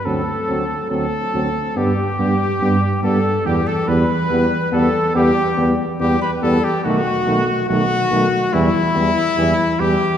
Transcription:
X:1
M:4/4
L:1/16
Q:1/4=71
K:Em
V:1 name="Cornet"
A4 A4 G6 A2 | G A B4 A2 G3 z G B A G | F4 F4 E6 G2 |]
V:2 name="Trumpet"
A4 A4 G6 A2 | G A B4 A2 G3 z G B A G | F4 F4 E6 G2 |]
V:3 name="French horn"
C2 C2 C2 C2 B,2 B,2 B,2 B,2 | B,2 B,2 B,2 B,2 B,2 B,2 B,2 B,2 | A,2 A,2 A,2 A,2 G,2 G,2 G,2 G,2 |]
V:4 name="Trombone" clef=bass
F,2 F,2 F,2 F,2 G,2 G,2 G,2 G,2 | G,2 G,2 G,2 G,2 G,2 G,2 G,2 G,2 | ^D,2 D,2 D,2 D,2 E,2 E,2 E,2 E,2 |]
V:5 name="Tuba" clef=bass
D,,2 D,,2 D,,2 D,,2 G,,2 G,,2 G,,2 G,,2 | E,,2 E,,2 E,,2 E,,2 E,,2 E,,2 E,,2 E,,2 | B,,,2 B,,,2 B,,,2 B,,,2 E,,2 E,,2 E,,2 E,,2 |]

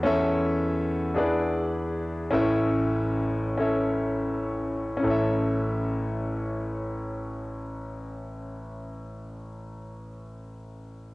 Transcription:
X:1
M:6/8
L:1/8
Q:3/8=39
K:A
V:1 name="Grand piano"
[CEAce]3 [DEGBd]3 | [CEABce]3 [CEAce]3 | [CEAce]6- | [CEAce]6 |]
V:2 name="Grand piano" clef=bass
[E,,E,]3 [E,,E,]3 | [A,,,A,,]6 | A,,,6- | A,,,6 |]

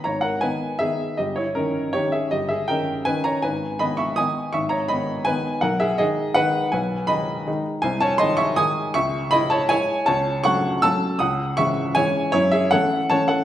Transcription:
X:1
M:3/4
L:1/8
Q:1/4=161
K:G#m
V:1 name="Upright piano"
[ca] [Af] [Bg]2 [Ge]2 | [=Gd] [Ec] [CA]2 [Gc] [^Ge] | [=Gd] [^Ge] [A=g]2 [B^g] [ca] | [Bg]2 [db] [ec'] [gd']2 |
[ec'] [ca] [db]2 [Bg]2 | [Af] [Ge] [Gd]2 [Bf]2 | [Bg]2 [db]3 z | [K:C#m] [^Bg] [ca] [d^b] [ec'] [gd']2 |
[ec']2 [db] [ca] [cg]2 | [ca]2 [fc']2 [ae']2 | [fd']2 [ec']2 [cg]2 | [Ec] [Ge] [Af]2 [ca] [Af] |]
V:2 name="Upright piano" clef=bass
G,,,2 [D,B,D]2 [D,B,D]2 | =G,,,2 [D,D]2 [D,CD]2 | =G,,,2 [D,CD]2 [D,CD]2 | G,,,2 [D,B,D]2 [D,B,D]2 |
G,,,2 [D,B,D]2 [D,B,D]2 | B,,,2 [D,G,D]2 [D,G,D]2 | B,,,2 [D,G,D]2 [D,G,D]2 | [K:C#m] ^B,,,2 [D,G,D]2 [D,G,D]2 |
C,,2 [G,E]2 [G,E]2 | C,,2 [F,A,C]2 [F,A,C]2 | C,,2 [E,G,C]2 [E,G,C]2 | F,,2 [E,A,C]2 [E,A,C]2 |]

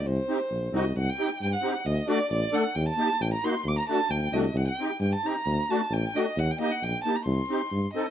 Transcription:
X:1
M:2/4
L:1/16
Q:1/4=133
K:none
V:1 name="Violin"
c6 _e2 | ^f g3 g f2- f/2 f/2 | _e2 d2 d2 ^f2 | g a3 g _b c'2 |
d' _b a2 g2 _e2 | ^f g3 g a _b2- | _b2 a2 g2 _e2 | ^f g _e f g2 a _b |
c'6 _e2 |]
V:2 name="Accordion"
z2 [C_EG] z3 [CE^F] z | z2 [C_EG] z3 [CEG] z | z2 [A,D^F] z3 [A,DA] z | z2 [_B,_EG] z3 [B,E^F] z |
z2 [A,D^F] z3 [A,DF] z | z2 [C_EG] z3 [CEG] z | z2 [A,D^F] z3 [A,DF] z | z2 [_B,_EG] z3 [B,EG] z |
z2 [C_EG] z3 [CEA] z |]
V:3 name="Tuba" clef=bass
C,,2 z2 _B,,,2 C,,2 | C,,2 z2 G,,2 z2 | D,,2 z2 A,,,2 z2 | _E,,2 z2 A,,,2 z2 |
D,,2 z2 D,,2 C,,2 | C,,2 z2 G,,2 z2 | D,,2 z2 A,,,2 z2 | _E,,2 z2 _B,,,2 z2 |
C,,2 z2 G,,2 z2 |]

